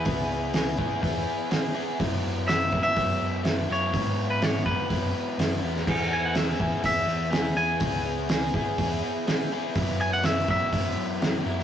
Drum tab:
CC |----------------|----------------|----------------|x---------------|
HH |o---o---o---o---|o---o---o---o---|o---o---o---o---|----o---o---o---|
SD |----o-------o---|----o-------o---|----o-------o--o|----o-------o---|
BD |o-----o-o-------|o-----o-o-------|o-----o-o-------|o-----o-o-------|

CC |----------------|----------------|
HH |o---o---o---o---|o---o---o---o---|
SD |----o-------o---|----o-------o--o|
BD |o-----o-o-------|o-----o-o-------|